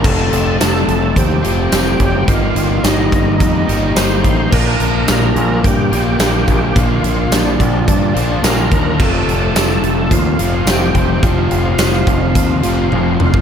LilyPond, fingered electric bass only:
\new Staff \with { instrumentName = "Fingered electric bass" } { \clef bass \time 4/4 \key f \mixolydian \tempo 4 = 107 f,,8 f,,8 f,,8 f,,8 ees,8 f,,8 f,,8 ges,,8 | g,,8 g,,8 g,,8 g,,8 f,8 g,,8 g,,8 a,,8 | bes,,8 bes,,8 bes,,8 bes,,8 g,8 bes,,8 bes,,8 bes,,8 | bes,,8 bes,,8 bes,,8 bes,,8 g,8 bes,,8 bes,,8 ees,8 |
f,,8 f,,8 f,,8 f,,8 ees,8 f,,8 f,,8 f,,8 | f,,8 f,,8 f,,8 f,,8 ees,8 f,,8 f,,8 f,,8 | }